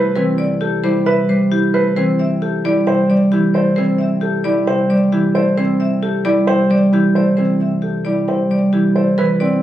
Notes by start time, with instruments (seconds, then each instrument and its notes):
Already playing: harp C3 E3 G3 A3 B3, grand piano B4, marimba C5
0.16 harp E3, grand piano C4, marimba B4
0.38 harp B3, marimba D5
0.61 marimba G4, grand piano A4
0.84 harp G3, grand piano E4, marimba C5
1.06 harp C3, grand piano B4, marimba E5
1.29 harp G3, marimba C5
1.51 grand piano E4, marimba G4
1.74 harp A3, grand piano B4, marimba C5
1.96 harp E3, grand piano C4, marimba C5
2.19 harp C4, marimba E5
2.42 marimba G4, grand piano A4
2.64 harp G3, grand piano E4, marimba D5
2.87 harp C3, grand piano C5, marimba G5
3.10 harp G3, marimba D5
3.32 harp E3, grand piano E4, marimba G4
3.54 harp A3, grand piano C5, marimba D5
3.76 harp E3, grand piano C4, marimba C5
3.98 harp C4, marimba E5
4.21 marimba G4, grand piano A4
4.44 harp G3, grand piano E4, marimba D5
4.67 harp C3, grand piano C5, marimba G5
4.90 harp G3, marimba D5
5.12 harp E3, grand piano E4, marimba G4
5.35 harp A3, grand piano C5, marimba D5
5.57 harp E3, grand piano C4, marimba C5
5.80 harp C4, marimba E5
6.02 marimba G4, grand piano A4
6.25 harp G3, grand piano E4, marimba D5
6.47 harp C3, grand piano C5, marimba G5
6.70 harp G3, marimba D5
6.92 harp E3, grand piano E4, marimba G4
7.15 harp A3, grand piano C5, marimba D5
7.37 harp E3, grand piano C4, marimba C5
7.60 harp C4, marimba E5
7.82 marimba G4, grand piano A4
8.05 harp G3, grand piano E4, marimba D5
8.28 harp C3, grand piano C5, marimba G5
8.51 harp G3, marimba D5
8.73 harp E3, grand piano E4, marimba G4
8.96 harp A3, grand piano C5, marimba D5
9.18 harp E3, marimba B4, grand piano B4
9.40 harp B3, grand piano C4, marimba D5